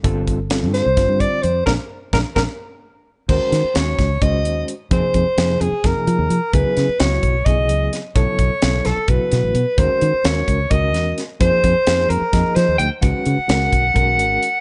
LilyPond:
<<
  \new Staff \with { instrumentName = "Soprano saxophone" } { \time 7/8 \key bes \major \tempo 4 = 129 r4. c''4 d''8 c''8 | bes'8 r8 bes'8 bes'8 r4. | \key f \phrygian c''4 des''4 ees''4 r8 | c''4. aes'8 bes'4. |
ces''4 des''4 ees''4 r8 | cis''4. a'8 b'4. | c''4 des''4 ees''4 r8 | c''4. bes'4 c''8 g''8 |
ges''2.~ ges''8 | }
  \new Staff \with { instrumentName = "Reed electric piano" } { \time 7/8 \key bes \major <d g c' f' a'>8. r16 <d g c' f' a'>8. r16 <d g c' f' c''>4 r8 | <aes bes d'>8 r8 <aes bes d'>8 <aes bes d'>8 r4. | \key f \phrygian <ees aes des' ges' bes'>8. r16 <ees aes des' ges' des''>8. r16 <ees aes des' ges' c''>4 r8 | <c f bes ees' aes'>8. r16 <c f bes ees' aes'>8. r16 <c f bes ees' aes'>4 r8 |
<des ges ces' fes' aes'>8. r16 <des ges ces' fes' ges'>8. r16 <des ges ces' fes' aes'>4 r8 | <cis fis b e' a'>8. r16 <cis fis b e' a'>8. r16 <cis fis b e' fis'>4 r8 | <ees aes des' ges' bes'>8. r16 <ees aes des' ges' bes'>8. r16 <ees aes des' ges' bes'>4 r8 | <f bes ees' aes' c''>8. r16 <f bes ees' aes' c''>8. r16 <f bes ees' aes' ees''>4 r8 |
<ees aes des' ges' ces''>8. r16 <ees aes des' ges' bes'>8. r16 <ees aes des' ges' bes'>4 r8 | }
  \new Staff \with { instrumentName = "Fingered electric bass" } { \clef bass \time 7/8 \key bes \major g,,4~ g,,16 g,8 c,16 g,,16 g,8 r16 f,8 | bes,,16 r8. bes,,16 r16 bes,,16 r4. r16 | \key f \phrygian ees,16 r16 ees16 r16 ees,8 des,8 des,8 ees,8 r8 | f,16 r16 f,16 r16 f,8 f,16 r16 f,16 r16 f16 ees,16 f16 r16 |
des,16 r16 des16 r16 des,8 ces,8 ces,8 des,8 r8 | b,,16 r16 b,,16 r16 b,,8 b,,16 r16 b,,16 r16 b,16 a,,16 b,16 r16 | ees,16 r16 ees16 r16 ees,8 des,8 des,8 fes,8 r8 | f,16 r16 f,16 r16 f,8 f,16 r16 f,16 r16 f16 ees,16 d,16 r16 |
des,16 r16 des16 r16 des,8 ces,8 ces,8 aes,,8 r8 | }
  \new DrumStaff \with { instrumentName = "Drums" } \drummode { \time 7/8 <hh bd>8 <hh bd>8 <hh sn>8 <hh sn>8 <hh bd sn>8 <hh bd>8 hh8 | <bd sn>4 <bd sn>8 <bd sn>8 r4. | <cymc bd>8 <hh sn>8 <hh sn>8 <hh bd sn>8 <hh bd>8 hh8 hh8 | <hh bd>8 <hh bd>8 <hh sn>8 hh8 <hh bd sn>8 hh8 hh8 |
<hh bd>8 <hh sn>8 <hh sn>8 <hh bd>8 <hh bd>8 hh8 <hh sn>8 | <hh bd>8 <hh bd>8 <hh sn>8 <hh sn>8 <hh bd>8 <hh sn>8 hh8 | <hh bd>8 hh8 <hh sn>8 <hh bd>8 <hh bd>8 <hh sn>8 <hh sn>8 | <hh bd>8 <hh bd>8 <hh sn>8 hh8 <hh bd sn>8 <hh sn>8 hh8 |
<hh bd>8 hh8 <hh sn>8 <hh bd>8 <hh bd>8 hh8 hh8 | }
>>